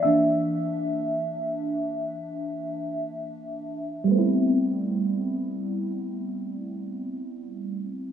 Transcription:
fm electric piano
0.03 E3 A#3 D4 E5
4.04 G3 A3
4.11 B3 C4
4.19 E4

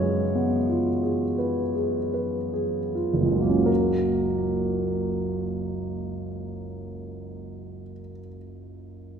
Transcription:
grand piano
Already playing: F#2 C#3 G#3 F4 G#4 B4 C#5
0.03 G#3
0.35 B3
0.70 F4
1.03 G#4
1.38 B4
1.75 G#4
2.14 B4
2.53 G#4
2.95 F4
3.13 F#1
3.22 C#2
3.31 F#3 G#3
3.41 A#3
3.49 C#4
3.58 F#4
3.66 A#4

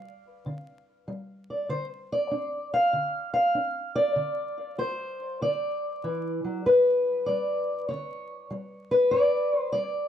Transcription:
steel-string acoustic guitar
Already playing: G3 F5
0.46 D3
1.08 G3
1.50 D5
1.69 D3 C5
2.12 D5
2.31 D4
2.74 F5
2.93 D3
3.34 F5
3.55 D4
3.96 D5
4.16 D3
4.78 F#4 C5
5.41 D3 D5
6.04 E3
6.44 F#3
6.66 G2 B4
7.26 G3 D5
7.89 D3 C#5
8.51 G3
8.91 B4
9.11 G2 D5
9.59 C5
9.72 G3 D5

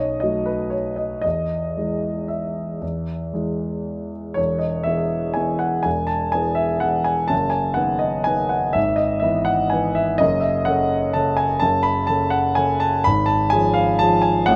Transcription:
grand piano
Already playing: B1 C#5 D#5
0.20 F#3 A3 F#4 D#5
0.46 B4
0.70 C#5
0.96 D#5
1.22 E2 D#5
1.77 E3 G#3 G#4
2.28 E5
2.81 E2
3.33 E3 G#3 G#4
4.34 E1 E2 C#5
4.59 D#5
4.84 E3 B3 G#4 E5
5.34 E3 B3 G#4 G#5
5.59 F#5
5.83 E1 E2 G#5
6.07 A5
6.32 E3 B3 G#4 G#5
6.55 E5
6.80 E3 B3 G#4 F#5
7.04 G#5
7.28 F#1 F#2 A5
7.50 G#5
7.74 D#3 B3 B4 F#5
7.99 D#5
8.24 D#3 B3 B4 G#5
8.49 F#5
8.73 G#1 G#2 E5
8.96 D#5
9.20 E3 B3 B4 E5
9.45 F#5
9.70 E3 B3 B4 G#5
9.95 E5
10.18 F#1 F#2 D#5
10.40 E5
10.65 C#3 C#4 A4 F#5
11.13 C#3 C#4 A4 A5
11.37 G#5
11.60 F#1 F#2 A5
11.83 B5
12.07 C#3 C#4 A4 A5
12.30 F#5
12.55 C#3 C#4 A4 G#5
12.80 A5
13.04 G#1 G#2 B5
13.26 A5
13.50 F3 C#4 G#4 G#5
13.74 F5
13.99 F3 C#4 G#4 A5
14.22 G#5
14.46 A1 A2 F#5

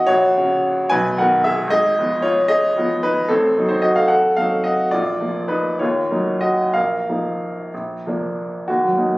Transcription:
upright piano
Already playing: D#3 B3 D#4 F#4 B4 D#5 F#5
0.07 A#1 F#4 C#5
0.38 C#3 C#4 F#4
0.90 B1 B4 G#5
1.18 D#3 B3 F#4 A#4 F#5
1.44 G#4 E5
1.67 G#1 D#5
1.71 G#4
1.99 F3 B3 F4
2.22 F4 C#5
2.48 G#4 D#5
2.78 F3 B3 F4
3.03 D#4 B4
3.29 A1 C4 A4
3.58 F#3 C4 D#4
3.69 D#4 C5
3.82 F#4 D#5
3.96 A4 F5
4.08 A4 F#5
4.37 F#3 C4 D#4 A4 F5
4.64 F#4 D#5
4.91 A#1 F4 D5
5.21 F3 A#3 F4
5.48 D#4 B4
5.79 D#2 F4 C#5
6.11 F#3 A#3 D#4
6.41 F#4 D#5
6.74 A#1 A#4 F5
7.09 F3 A#3 D#4
7.74 A#1
8.07 F3 A#3 D4
8.68 D#2 F#4
8.84 F#3
8.97 A#3 D#4
9.12 A#2

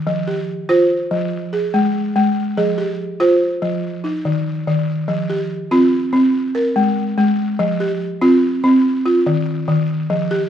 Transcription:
balafon
0.07 F3
0.27 G4
0.69 F4 C5
1.11 F3
1.53 G#4
1.74 G#3
2.16 G#3
2.57 F3 G#4
2.78 G4
3.20 F4 C5
3.62 F3
4.04 D#4
4.25 D#3
4.67 D#3
5.08 F3
5.30 G4
5.71 C4 F4
6.13 C4
6.55 A#4
6.76 G#3
7.18 G#3
7.59 F3
7.80 G4
8.21 C4 F4
8.64 C4
9.06 F4
9.26 D#3
9.68 D#3
10.10 F3
10.31 G4

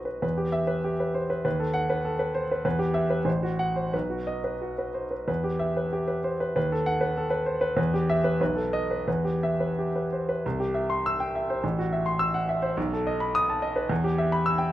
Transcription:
grand piano
Already playing: B1 F#4 B4 C5 D#5
0.05 B4
0.22 E2 B4
0.37 G4
0.52 E5
0.67 B4
0.84 G4
1.00 B4
1.14 C5
1.30 B4
1.45 D#2 B4
1.60 A4
1.74 F#5
1.90 B4
2.05 A4
2.19 B4
2.35 C5
2.52 B4
2.65 E2 B4
2.79 G4
2.94 E5
3.10 B4
3.25 A1 C5
3.43 F#4
3.59 F#5
3.76 C5
3.93 B1 B4
4.10 F#4
4.27 D#5
4.44 B4
4.62 F#4
4.78 B4
4.94 C5
5.11 B4
5.28 E2 B4
5.44 G4
5.59 E5
5.77 B4
5.93 G4
6.08 B4
6.24 C5
6.40 B4
6.56 D#2 B4
6.72 A4
6.86 F#5
7.01 B4
7.17 A4
7.30 B4
7.46 C5
7.61 B4
7.77 E2 B4
7.94 G4
8.10 E5
8.24 B4
8.40 B1 B4
8.56 A4
8.73 D#5
8.91 B4
9.08 E2 B4
9.25 G4
9.43 E5
9.60 B4
9.79 G4
9.95 B4
10.13 C5
10.29 B4
10.46 C2
10.60 G4
10.74 E5
10.90 C6
11.06 E6
11.20 G5
11.35 E5
11.50 C5
11.64 A1
11.79 F#4
11.92 E5
12.06 C6
12.19 E6
12.34 F#5
12.49 E5
12.62 C5
12.77 B1
12.93 A4
13.07 D#5
13.20 B5
13.35 D#6
13.50 A5
13.62 D#5
13.76 B4
13.89 E2
14.04 G4
14.18 E5
14.32 B5
14.46 E6
14.58 G5

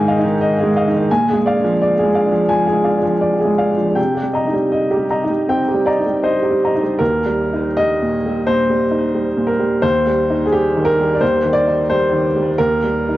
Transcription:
upright piano
Already playing: G#2 D#3 G#3 D#4 G#4 D#5 F5 G#5
0.08 D#5 F5
0.19 D#4
0.25 D#3
0.41 D#5
0.59 G#4
0.64 G#3
0.76 D#5 F5
0.88 D#4
0.94 D#3
1.11 A#2 G#5
1.29 G#4
1.33 G#3
1.46 D5 F5
1.57 D4
1.64 F3
1.82 D5
1.98 G#4
2.03 G#3
2.14 D5 F5
2.26 D4
2.32 F3
2.49 F3 G#5
2.67 G#4
2.73 G#3
2.84 D5 F5
2.98 D4
3.03 F3
3.21 D5
3.40 G#4
3.45 G#3
3.58 D5 F5
3.71 D4
3.77 F3
3.95 C3 G5
4.14 G4
4.23 G3
4.33 D#5 A#5
4.47 D#4
4.53 G3
4.72 D#5
4.91 G4
4.96 G3
5.11 D#5 A#5
5.24 D#4
5.30 G3
5.49 C4 G5
5.68 G4
5.74 G3
5.86 D5 D#5 A#5
5.99 D#4
6.06 G3
6.24 C5 D#5
6.43 G4
6.51 G3
6.64 D#5 A#5
6.75 D#4
6.83 G3
6.99 D#2 A#4
7.26 G3
7.53 D#4
7.77 G3 D#5
8.02 A#2
8.26 G3
8.47 A#2 C5
8.70 G3
8.91 D#4
9.14 G3
9.37 A#2
9.47 A#4
9.59 G3
9.82 D#2 C5
10.07 G3
10.30 D#4
10.46 G#4
10.52 G3 G4
10.77 D#3
10.85 A#4
11.00 G3
11.15 D5
11.21 D#2 C5
11.45 D#3
11.53 D5
11.68 D#4
11.90 G3 C5
12.13 D#3
12.36 G3
12.58 D#2 A#4
12.84 G3
13.09 D#4

